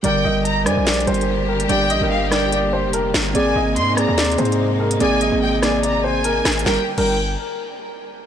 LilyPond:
<<
  \new Staff \with { instrumentName = "Violin section" } { \time 4/4 \key g \phrygian \tempo 4 = 145 g''4 bes''8 aes''8 r2 | g''4 f''8 g''8 r2 | aes''4 c'''8 bes''8 r2 | aes''4 g''8 aes''8 bes''8 aes''4. |
g''16 r8 g''8 r2 r8. | }
  \new Staff \with { instrumentName = "Upright piano" } { \time 4/4 \key g \phrygian d''8 ees''4 d''8 d''8 c''4 bes'8 | d''8 ees''4 d''8 d''8 c''8 bes'4 | d''8 ees''4 d''8 d''8 c''4 bes'8 | d''8 ees''4 d''8 d''8 c''8 bes'4 |
bes'16 r8 bes'8 r2 r8. | }
  \new Staff \with { instrumentName = "Synth keys" } { \time 4/4 \key g \phrygian <d g bes'>4~ <d g bes'>16 r16 <g d' c''>4 <g d' bes'>4~ <g d' bes'>16 r16 | <g d' g'>8. <g d' bes'>8. <g d' bes'>4.~ <g d' bes'>16 r8. | <bes c' aes'>4~ <bes c' aes'>16 r16 <bes c' aes'>4 <bes c' aes'>4~ <bes c' aes'>16 r16 | <bes c' aes'>8. <bes c' aes'>8. <bes c' aes'>4.~ <bes c' aes'>16 r8. |
<g d' bes'>16 r8 <g d' bes'>8 r2 r8. | }
  \new Staff \with { instrumentName = "String section" } { \clef bass \time 4/4 \key g \phrygian << { <d g g'>1~ | <d g g'>1 | <c aes ees'>1~ | <c aes ees'>1 |
<d g bes g'>8 r2. r8 | } \\ { bes1~ | bes1~ | bes1~ | bes1 |
r1 | } >> }
  \new Staff \with { instrumentName = "808-style bass" } { \clef bass \time 4/4 \key g \phrygian g,,8 g,,4 g,16 bes,,8. g,,4. | g,,8 bes,,16 g,,2 f,,8. g,,8 | aes,,8 aes,,8 aes,8. ees,8. aes,4. | aes,,8. aes,,2~ aes,,8. aes,,8 |
g,,16 r8 g,,4 r2 r16 | }
  \new DrumStaff \with { instrumentName = "Drums" } \drummode { \time 4/4 hh4 hh8 <hh ss>8 \tuplet 3/2 { <hh sn>16 hh16 hh16 hh16 hh16 hh16 } r8. hh16 | hh8 hh8 r8 <hh ss sn>8 hh4 hh8 <hh sn>8 | hh4 hh8 <hh ss>8 \tuplet 3/2 { <hh sn>16 hh16 hh16 hh16 hh16 hh16 } r8. hh16 | hh8 hh8 r8 <hh ss sn>8 hh4 \tuplet 3/2 { hh16 r16 r16 <hh ss sn>16 hh16 hh16 } |
sn8. cymc16 r4 r4 r4 | }
>>